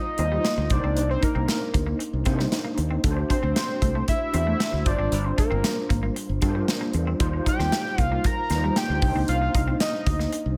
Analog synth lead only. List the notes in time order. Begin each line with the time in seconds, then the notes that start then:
Already playing: D#5
0.72 D5
1.11 C5
1.24 A#4
3.30 C5
4.09 E5
4.87 D5
5.26 C5
5.39 A#4
7.48 G5
8.02 F5
8.26 A#5
8.77 G5
9.29 F5
9.81 D#5